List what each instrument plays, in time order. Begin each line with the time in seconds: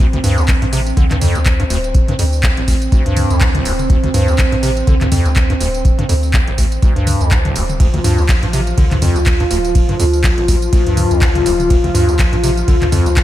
0.00 analog synth pad C4, kick
0.13 acid bass D2, closed hi-hat, mid tom
0.24 sub bass D2, acid bass G2, open hi-hat, tambourine
0.38 acid bass D2, tambourine
0.48 kick, clap, closed hi-hat, tambourine
0.62 sub bass A1, acid bass G2, closed hi-hat
0.73 acid bass C3, open hi-hat, tambourine
0.87 tambourine
0.97 sub bass D2, acid bass D3, kick, closed hi-hat, tambourine
1.11 acid bass G2, clap, closed hi-hat, mid tom
1.21 acid bass F2, open hi-hat, mid tom, tambourine
1.35 acid bass C2, sub bass D2, closed hi-hat, tambourine
1.46 kick, clap, closed hi-hat, tambourine
1.60 acid bass G2, closed hi-hat
1.70 sub bass D1, acid bass D2, open hi-hat, tambourine
1.84 closed hi-hat, tambourine
1.95 kick, closed hi-hat, tambourine
2.08 acid bass G2, closed hi-hat, mid tom
2.19 sub bass D2, acid bass F2, open hi-hat, tambourine
2.33 tambourine
2.43 kick, clap, closed hi-hat, tambourine
2.57 acid bass D1, sub bass A1, closed hi-hat
2.68 acid bass D2, kick, open hi-hat, tambourine
2.82 closed hi-hat, tambourine
2.92 acid bass D2, sub bass D2, kick, closed hi-hat, tambourine
3.06 acid bass G2, closed hi-hat
3.17 open hi-hat, mid tom, tambourine
3.30 sub bass D2, acid bass F2, closed hi-hat, tambourine
3.41 acid bass A2, kick, clap, closed hi-hat, tambourine
3.55 acid bass D1, closed hi-hat, mid tom
3.65 sub bass D1, acid bass F2, open hi-hat, tambourine
3.79 closed hi-hat, mid tom, tambourine
3.90 acid bass D2, kick, closed hi-hat, tambourine
4.04 acid bass D2, closed hi-hat, mid tom
4.14 sub bass D2, acid bass G2, open hi-hat, tambourine
4.28 acid bass D2, tambourine
4.38 kick, clap, closed hi-hat, tambourine
4.52 sub bass A1, acid bass G2, closed hi-hat
4.63 acid bass C3, open hi-hat, tambourine
4.77 closed hi-hat, tambourine
4.87 sub bass D2, acid bass D3, kick, closed hi-hat, tambourine
5.01 acid bass G2, clap, closed hi-hat, mid tom
5.12 acid bass F2, open hi-hat, mid tom, tambourine
5.26 acid bass C2, sub bass D2, closed hi-hat, tambourine
5.36 kick, clap, closed hi-hat, tambourine
5.50 acid bass G2, closed hi-hat
5.60 sub bass D1, acid bass D2, open hi-hat, tambourine
5.74 closed hi-hat, tambourine
5.85 kick, closed hi-hat, tambourine
5.99 acid bass G2, closed hi-hat, mid tom
6.09 sub bass D2, acid bass F2, open hi-hat, tambourine
6.23 tambourine
6.34 kick, clap, closed hi-hat, tambourine
6.47 acid bass D1, sub bass A1, closed hi-hat
6.58 acid bass D2, kick, open hi-hat, tambourine
6.72 closed hi-hat, tambourine
6.82 acid bass D2, sub bass D2, kick, closed hi-hat, tambourine
6.96 acid bass G2, closed hi-hat
7.07 open hi-hat, mid tom, tambourine
7.21 sub bass D2, acid bass F2, closed hi-hat, tambourine
7.31 acid bass A2, kick, clap, closed hi-hat, tambourine
7.45 acid bass D1, closed hi-hat, mid tom
7.55 sub bass D1, acid bass F2, open hi-hat, tambourine
7.69 closed hi-hat, mid tom, tambourine
7.80 acid bass D2, analog synth pad F3 F4, kick, closed hi-hat, ride, tambourine
7.94 acid bass D2, closed hi-hat, mid tom
8.04 sub bass D2, acid bass G2, open hi-hat, tambourine
8.18 acid bass D2, tambourine
8.29 kick, clap, closed hi-hat, ride, tambourine
8.43 sub bass A1, acid bass G2, closed hi-hat
8.53 acid bass C3, open hi-hat, tambourine
8.67 closed hi-hat, tambourine
8.78 sub bass D2, acid bass D3, kick, closed hi-hat, ride, tambourine
8.91 acid bass G2, clap, closed hi-hat, mid tom
9.02 acid bass F2, open hi-hat, mid tom, tambourine
9.16 acid bass C2, sub bass D2, closed hi-hat, tambourine
9.26 kick, clap, closed hi-hat, ride, tambourine
9.40 acid bass G2, closed hi-hat
9.51 sub bass D1, acid bass D2, open hi-hat, tambourine
9.65 closed hi-hat, tambourine
9.75 kick, closed hi-hat, ride, tambourine
9.89 acid bass G2, closed hi-hat, mid tom
10.00 sub bass D2, acid bass F2, open hi-hat, tambourine
10.13 tambourine
10.24 kick, clap, closed hi-hat, ride, tambourine
10.38 acid bass D1, sub bass A1, closed hi-hat
10.48 acid bass D2, kick, open hi-hat, tambourine
10.62 closed hi-hat, tambourine
10.73 acid bass D2, sub bass D2, kick, closed hi-hat, ride, tambourine
10.87 acid bass G2, closed hi-hat
10.97 open hi-hat, mid tom, tambourine
11.11 sub bass D2, acid bass F2, closed hi-hat, tambourine
11.22 acid bass A2, kick, clap, closed hi-hat, ride, tambourine
11.35 acid bass D1, closed hi-hat, mid tom
11.46 sub bass D1, acid bass F2, open hi-hat, tambourine
11.60 closed hi-hat, mid tom, tambourine
11.70 acid bass D2, kick, closed hi-hat, ride, tambourine
11.84 acid bass D2, closed hi-hat, mid tom
11.95 sub bass D2, acid bass G2, open hi-hat, tambourine
12.08 acid bass D2, tambourine
12.19 kick, clap, closed hi-hat, ride, tambourine
12.33 sub bass A1, acid bass G2, closed hi-hat
12.43 acid bass C3, open hi-hat, tambourine
12.57 closed hi-hat, tambourine
12.68 sub bass D2, acid bass D3, kick, closed hi-hat, ride, tambourine
12.82 acid bass G2, clap, closed hi-hat, mid tom
12.92 acid bass F2, open hi-hat, mid tom, tambourine
13.06 acid bass C2, sub bass D2, closed hi-hat, tambourine
13.17 kick, clap, closed hi-hat, ride, tambourine